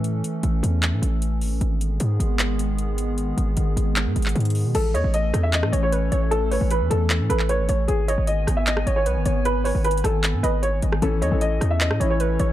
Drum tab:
CC |------------------------------------------------------------------------------------------------|------------------------------------------------------------------------------------------------|------------------------------------------------------------------------------------------------|x-----------------------------------------------------------------------------------------------|
HH |x-----------x-----------x-----------x-----------x-----------x-----------x-----------o-----------|x-----------x-----------x-----------x-----------x-----------x-----------x-----------x-----------|x-----------x-----------x-----------x-----------x-----------x---x---x---x--x--x--x--o-----------|x-----------x-----------x-----------x-----------x-----------x-----------x-----------x-----------|
CP |------------------------------------------------x-----------------------------------------------|------------------------------------------------x-----------------------------------------------|------------------------------------------------x-----------------x-----------------------------|------------------------------------------------x-----------------------------------------------|
SD |------------------------------------------------------------------------------------------------|------------------------------------------------------------------------------------------------|------------------------------------------------------------------------------------------------|------------------------------------r-----------------r-----------------------------------------|

CC |------------------------------------------------------------------------------------------------|------------------------------------------------------------------------------------------------|------------------------------------------------------------------------------------------------|------------------------------------------------------------------------------------------------|
HH |x-----------o-----------x-----------x-----------x-----------x-----------x-----------x-----------|x-----------x-----------x-----------x-----------x-----------x-----------x-----------x-----------|x-----------o-----------x---x---x---x-----------x-----------x-----------x-----------x-----------|x-----------x-----------x-----------x-----------x-----------x-----------x-----------x-----------|
CP |------------------------------------------------x-----------------x-----------------------------|------------------------------------------------x-----------------------------------------------|------------------------------------------------x-----------------------------------------------|------------------------------------------------x-----------------------------------------------|
SD |------------------------------------------------------------------------------------------------|------------------------------------r-----------------r-----------------------------------------|------------------------------------r-----------------------------------------------------r-----|------------------------------------r-----------------r-----------------------------------------|